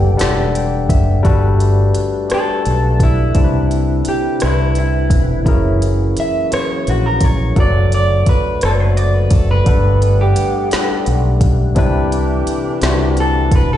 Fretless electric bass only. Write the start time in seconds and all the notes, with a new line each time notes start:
Already playing: F#1
0.21 E1
0.90 F#1
1.26 G1
1.98 muted fretless electric bass stroke
2.32 muted fretless electric bass stroke
2.67 B1
3.36 C2
4.08 muted fretless electric bass stroke
4.43 C2
5.11 E1
5.47 F#1
6.17 muted fretless electric bass stroke
6.53 muted fretless electric bass stroke
6.88 A#1
7.58 F#1
8.28 muted fretless electric bass stroke
8.63 F#1
9.32 F#1
9.67 G1
10.38 muted fretless electric bass stroke
10.73 muted fretless electric bass stroke
11.07 B1
11.77 C2
12.48 muted fretless electric bass stroke
12.83 C2
13.52 E1